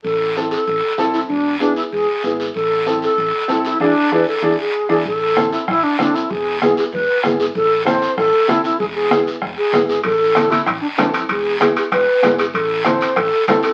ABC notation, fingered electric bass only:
X:1
M:4/4
L:1/8
Q:1/4=192
K:Am
V:1 name="Fingered electric bass" clef=bass
A,,,4 A,,, z C,,2 | E,,,4 E,,, z ^G,,,2 | A,,,4 A,,, z C,,2 | E,, z E,, z E,, z2 E,, |
A,,,4 A,,, z C,,2 | E,,,4 E,,, z ^G,,,2 | A,,,4 A,,, z C,,2 | E,,,4 E,,, z ^G,,,2 |
A,,,4 A,,, z F,,,2 | E,,,4 E,,, z ^G,,,2 | A,,,4 A,,, z C,,2 |]